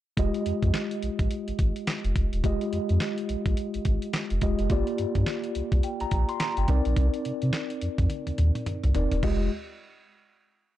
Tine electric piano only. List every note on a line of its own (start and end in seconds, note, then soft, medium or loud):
0.17 2.39 G#3 medium
0.17 2.40 F4 medium
0.17 2.40 G4 medium
0.17 2.41 D#5 medium
2.44 4.38 G#3 medium
2.44 4.38 F4 medium
2.44 4.38 G4 medium
2.44 4.39 D#5 medium
4.42 4.70 G#3 medium
4.42 4.69 F4 medium
4.42 4.70 G4 medium
4.42 4.71 D#5 medium
4.70 6.64 A#3 medium
4.70 6.64 F4 medium
4.70 6.65 G4 medium
4.70 6.65 D5 medium
5.84 6.00 G5 medium
6.01 6.28 A#5 medium
6.29 6.40 C6 medium
6.41 6.57 A#5 medium
6.58 6.84 G5 medium
6.68 8.91 C4 medium
6.68 8.91 D#4 medium
6.68 8.91 A#4 medium
6.68 8.92 D5 medium
8.95 9.23 C4 medium
8.95 9.23 D#4 medium
8.95 9.23 A#4 medium
8.95 9.24 D5 medium
9.24 9.50 G#3 medium
9.24 9.50 F4 medium
9.24 9.50 G4 medium
9.24 9.50 D#5 medium